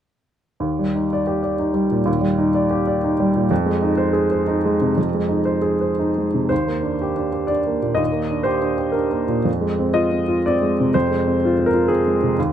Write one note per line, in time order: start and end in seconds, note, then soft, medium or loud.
0.60 2.03 D#2 soft
0.79 1.05 G3 soft
0.95 1.21 D#4 soft
1.13 1.38 D5 soft
1.27 1.53 G4 soft
1.43 1.69 D5 soft
1.59 1.85 D#4 soft
1.74 2.00 G3 soft
1.91 2.17 A#2 soft
2.05 3.45 D#2 medium
2.21 2.48 G3 soft
2.38 2.64 D#4 soft
2.54 2.80 D5 soft
2.71 2.96 G4 soft
2.87 3.13 D5 soft
3.04 3.29 D#4 soft
3.20 3.45 G3 soft
3.36 3.51 A#2 soft
3.51 4.94 F2 medium
3.66 3.92 G#3 soft
3.82 4.08 D#4 soft
3.97 4.24 C5 medium
4.13 4.40 G#4 soft
4.31 4.58 C5 soft
4.47 4.74 D#4 medium
4.66 4.92 G#3 soft
4.82 5.08 C3 soft
4.97 6.47 F2 soft
5.14 5.40 G#3 soft
5.29 5.56 D#4 soft
5.45 5.73 C5 soft
5.62 5.90 G#4 soft
5.81 6.09 C5 soft
5.99 6.27 D#4 soft
6.18 6.45 G#3 soft
6.34 6.51 C3 soft
6.49 7.95 D#2 soft
6.49 7.50 C5 medium
6.67 6.94 A#3 soft
6.83 7.10 D4 soft
7.02 7.28 G4 soft
7.16 7.44 D4 soft
7.33 7.60 G4 soft
7.47 7.76 D4 soft
7.47 7.98 D5 medium
7.67 7.93 A#3 soft
7.82 8.09 A#2 soft
7.95 9.42 D#2 soft
7.95 8.46 D#5 medium
8.12 8.40 A#3 soft
8.30 8.57 D4 soft
8.43 8.73 G4 soft
8.43 8.95 C5 medium
8.62 8.90 D4 soft
8.78 9.06 G4 soft
8.92 9.22 D4 soft
8.92 9.45 A#4 soft
9.11 9.39 A#3 soft
9.28 9.46 A#2 soft
9.45 10.89 F2 soft
9.61 9.88 G#3 soft
9.79 10.06 C4 soft
9.94 10.21 F4 soft
9.94 10.44 D#5 medium
10.12 10.38 C4 soft
10.28 10.55 F4 soft
10.46 10.73 C4 soft
10.46 10.95 D5 medium
10.62 10.88 G#3 soft
10.80 11.05 C3 soft
10.94 12.33 F2 medium
10.94 11.66 C5 medium
11.11 11.36 G#3 soft
11.27 11.52 C4 soft
11.45 11.69 F4 soft
11.59 11.84 C4 soft
11.66 11.90 A#4 medium
11.74 11.99 F4 soft
11.88 12.15 C4 soft
11.88 12.37 G#4 medium
12.08 12.32 G#3 soft
12.23 12.38 C3 soft
12.39 12.53 D#2 medium